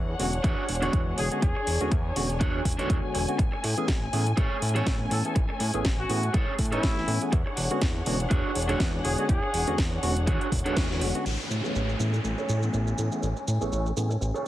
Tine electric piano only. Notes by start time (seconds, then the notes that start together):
0.19 D3 G#3 B3 C#4 F#4
0.82 D3 G#3 B3 F#4 C#5
1.31 D3 G#3 B3 C#4 F#4
1.80 D3 G#3 B3 C#4 F#4
2.16 D3 G#3 B3 C#4 F#4
2.78 D3 G#3 B3 F#4 C#5
3.28 D3 G#3 B3 C#4 F#4
3.77 E3 A3 B3 C#4 G#4
4.13 E3 A3 B3 C#4 G#4
4.75 E3 A3 B3 C#4 G#5
5.24 E3 A3 B3 C#4 G#4
5.74 E3 A3 B3 C#4 G#4
6.09 E3 A3 B3 C#4 G#4
6.73 E3 A3 B3 C#4 G#5
7.22 E3 A3 B3 C#4 G#4
7.71 D3 G#3 B3 C#4 F#4
8.06 D3 G#3 B3 C#4 F#4
8.69 D3 G#3 B3 F#4 C#5
9.18 D3 G#3 B3 C#4 F#4
9.67 D3 G#3 B3 C#4 F#4
10.02 D3 G#3 B3 C#4 F#4
10.65 D3 G#3 B3 F#4 C#5
11.15 D3 G#3 B3 C#4 F#4
11.64 E3 A3 B3 C#4 G#4
11.99 E3 A3 B3 C#4 G#4
12.62 E3 A3 B3 C#4 G#5
13.12 E3 A3 B3 C#4 G#4
13.61 E3 A3 B3 C#4 G#4
13.96 E3 A3 B3 C#4 G#4